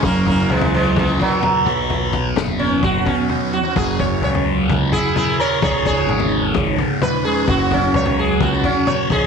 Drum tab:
SD |----------------|----o-----------|----------------|----------------|
T2 |----o-------o---|--o-o-----o-----|----o-------o---|----o-------o---|
FT |o-o--o--o-o-o---|o-o--o--o-o-o---|o-o--o--o-o-o---|o-o--o--o-o-o---|
BD |o-o-----o-o---o-|--o-----o-o-----|o-o-----o-o-----|o-o-----o-o-----|

SD |----------------|
T2 |----o-------o---|
FT |o-o--o--o-o-o---|
BD |o-o-----o-o---o-|